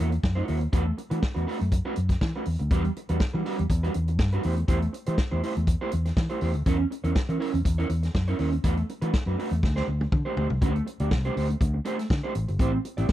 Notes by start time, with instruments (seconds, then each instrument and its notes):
0.00 fingered electric bass E2, clean electric guitar A#3 E4 F#4 C#5
0.12 muted clean electric guitar stroke, closed hi-hat
0.23 fingered electric bass F#2, muted clean electric guitar stroke, kick, snare
0.35 clean electric guitar A#3 E4 F#4 C#5
0.47 fingered electric bass D#2, clean electric guitar A#3 E4 F#4 C#5, open hi-hat
0.61 muted clean electric guitar stroke, closed hi-hat
0.72 fingered electric bass E2, clean electric guitar A3 D4 F#4 B4, kick, closed hi-hat
0.86 muted clean electric guitar stroke
0.98 muted clean electric guitar stroke, closed hi-hat
1.10 fingered electric bass E3, clean electric guitar A3 D4 F#4 B4, closed hi-hat
1.21 muted clean electric guitar stroke, kick, snare
1.34 fingered electric bass E2, clean electric guitar A3 D4 F#4 B4, closed hi-hat
1.47 clean electric guitar A3 D4 F#4 B4, open hi-hat
1.60 fingered electric bass F#2, muted clean electric guitar stroke, closed hi-hat
1.72 muted clean electric guitar stroke, kick, closed hi-hat
1.85 clean electric guitar A3 D4 F#4 B4
1.96 fingered electric bass F#2, muted clean electric guitar stroke, closed hi-hat
2.09 muted clean electric guitar stroke, kick, snare, closed hi-hat
2.21 fingered electric bass E3, muted clean electric guitar stroke, kick, snare
2.36 clean electric guitar A3 D4 F#4 B4
2.45 fingered electric bass E2, muted clean electric guitar stroke, open hi-hat
2.59 fingered electric bass D2, muted clean electric guitar stroke, closed hi-hat
2.71 fingered electric bass E2, clean electric guitar G3 D4 F#4 B4, kick, closed hi-hat
2.84 muted clean electric guitar stroke, closed hi-hat
2.96 muted clean electric guitar stroke, closed hi-hat
3.09 fingered electric bass E2, clean electric guitar G3 D4 F#4 B4, closed hi-hat
3.20 muted clean electric guitar stroke, muted fingered electric bass stroke, kick, snare
3.33 fingered electric bass E3, clean electric guitar G3 D4 F#4 B4
3.45 clean electric guitar G3 D4 F#4 B4, open hi-hat
3.59 fingered electric bass E2, muted clean electric guitar stroke, closed hi-hat
3.70 fingered electric bass E2, muted clean electric guitar stroke, kick, closed hi-hat
3.83 clean electric guitar G3 D4 F#4 B4, closed hi-hat
3.94 fingered electric bass E2, muted clean electric guitar stroke, closed hi-hat
4.08 muted clean electric guitar stroke, closed hi-hat
4.19 fingered electric bass G2, muted clean electric guitar stroke, kick, snare
4.32 clean electric guitar G3 D4 F#4 B4, closed hi-hat
4.43 fingered electric bass E2, clean electric guitar A3 E4 G4 C5, open hi-hat
4.56 muted clean electric guitar stroke, closed hi-hat
4.68 fingered electric bass E2, clean electric guitar A3 E4 G4 C5, kick, closed hi-hat
4.81 muted clean electric guitar stroke, closed hi-hat
4.93 muted clean electric guitar stroke, closed hi-hat
5.06 fingered electric bass E3, clean electric guitar A3 E4 G4 C5, closed hi-hat
5.18 muted clean electric guitar stroke, kick, snare
5.31 fingered electric bass E2, clean electric guitar A3 E4 G4 C5
5.43 clean electric guitar A3 E4 G4 C5, open hi-hat
5.56 fingered electric bass E2, muted clean electric guitar stroke, closed hi-hat
5.67 muted clean electric guitar stroke, kick, closed hi-hat
5.81 clean electric guitar A3 E4 G4 C5
5.92 fingered electric bass E2, muted clean electric guitar stroke, closed hi-hat
6.05 muted clean electric guitar stroke, snare, closed hi-hat
6.17 fingered electric bass E3, muted clean electric guitar stroke, kick, snare
6.29 clean electric guitar A3 E4 G4 C5, closed hi-hat
6.41 fingered electric bass E2, clean electric guitar A3 E4 G4 C5, open hi-hat
6.54 fingered electric bass D2, muted clean electric guitar stroke, closed hi-hat
6.66 fingered electric bass E2, clean electric guitar C#4 E4 A#4 C#5, kick, closed hi-hat
6.79 muted clean electric guitar stroke
6.91 muted clean electric guitar stroke, closed hi-hat
7.04 fingered electric bass E2, clean electric guitar C#4 E4 A#4 C#5, closed hi-hat
7.15 muted clean electric guitar stroke, muted fingered electric bass stroke, kick, snare
7.29 fingered electric bass E3, clean electric guitar C#4 E4 A#4 C#5, closed hi-hat
7.40 clean electric guitar C#4 E4 A#4 C#5, open hi-hat
7.54 fingered electric bass E2, muted clean electric guitar stroke, closed hi-hat
7.65 fingered electric bass E2, muted clean electric guitar stroke, kick, closed hi-hat
7.78 clean electric guitar C#4 E4 A#4 C#5, closed hi-hat
7.90 fingered electric bass E2, muted clean electric guitar stroke, closed hi-hat
8.03 muted clean electric guitar stroke, snare, closed hi-hat
8.14 fingered electric bass F#2, muted clean electric guitar stroke, kick, snare
8.27 clean electric guitar C#4 E4 A#4 C#5, closed hi-hat
8.39 fingered electric bass D#2, clean electric guitar C#4 E4 A#4 C#5, open hi-hat
8.52 muted clean electric guitar stroke, closed hi-hat
8.64 fingered electric bass E2, clean electric guitar A3 D4 F#4 B4, kick, closed hi-hat
8.77 muted clean electric guitar stroke, closed hi-hat
8.89 muted clean electric guitar stroke, closed hi-hat
9.02 fingered electric bass E3, clean electric guitar A3 D4 F#4 B4, closed hi-hat
9.14 muted clean electric guitar stroke, kick, snare
9.26 fingered electric bass F#2, clean electric guitar A3 D4 F#4 B4
9.38 clean electric guitar A3 D4 F#4 B4, open hi-hat
9.51 fingered electric bass E2, muted clean electric guitar stroke, closed hi-hat
9.63 fingered electric bass D2, muted clean electric guitar stroke, kick, snare
9.76 clean electric guitar A3 D4 G4 C5, snare
9.88 fingered electric bass D2, muted clean electric guitar stroke
10.01 muted clean electric guitar stroke, high tom
10.12 fingered electric bass D3, muted clean electric guitar stroke, kick, mid tom
10.25 clean electric guitar A3 D4 G4 C5
10.37 fingered electric bass D2, clean electric guitar A3 D4 G4 C5, floor tom
10.50 fingered electric bass C2, muted clean electric guitar stroke, floor tom
10.61 fingered electric bass D2, clean electric guitar A3 D4 G4 C5, kick, closed hi-hat
10.75 muted clean electric guitar stroke, closed hi-hat
10.86 muted clean electric guitar stroke, closed hi-hat
11.00 fingered electric bass D2, clean electric guitar A3 D4 G4 D5, closed hi-hat
11.11 fingered electric bass C2, muted clean electric guitar stroke, kick, snare
11.25 clean electric guitar A3 D4 G4 C5, closed hi-hat
11.36 fingered electric bass D2, clean electric guitar A3 D4 G4 C5, open hi-hat
11.50 muted clean electric guitar stroke, closed hi-hat
11.61 fingered electric bass D2, muted clean electric guitar stroke, kick, closed hi-hat
11.74 muted clean electric guitar stroke
11.85 clean electric guitar A3 D4 G4 C5, closed hi-hat
11.99 muted clean electric guitar stroke, snare, closed hi-hat
12.10 fingered electric bass D3, muted clean electric guitar stroke, kick, snare
12.23 clean electric guitar A3 D4 G4 C5
12.35 fingered electric bass A1, muted clean electric guitar stroke, closed hi-hat
12.48 fingered electric bass G1, muted clean electric guitar stroke, closed hi-hat
12.59 fingered electric bass A1, clean electric guitar C4 E4 G4 C5, kick, closed hi-hat
12.74 muted clean electric guitar stroke
12.85 muted clean electric guitar stroke, closed hi-hat
12.97 fingered electric bass A1, clean electric guitar C4 E4 G4 D5, closed hi-hat
13.09 kick, snare